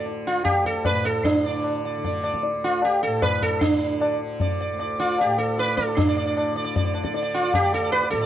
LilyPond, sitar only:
\new Staff \with { instrumentName = "Sitar" } { \time 3/4 \tempo 4 = 152 << { r2. | r8 d''8 r8 d''8 d''8 d''8 | r2. | r4 d''8 r8 d''8 d''8 |
d''8 d''8 d''8 r8 d''8 d''8 | r16 d''16 d''16 d''16 d''8 d''16 d''16 d''16 d''16 d''16 d''16 | d''16 d''8 d''8 d''8 d''8 d''8 d''16 | } \\ { r8 f'8 g'8 a'8 b'8 a'8 | d'4. r4. | r8 f'8 g'8 a'8 b'8 a'8 | d'4. r4. |
r8 f'8 g'8 a'8 b'8 a'8 | d'4. r4. | r8 f'8 g'8 a'8 b'8 a'8 | } >> }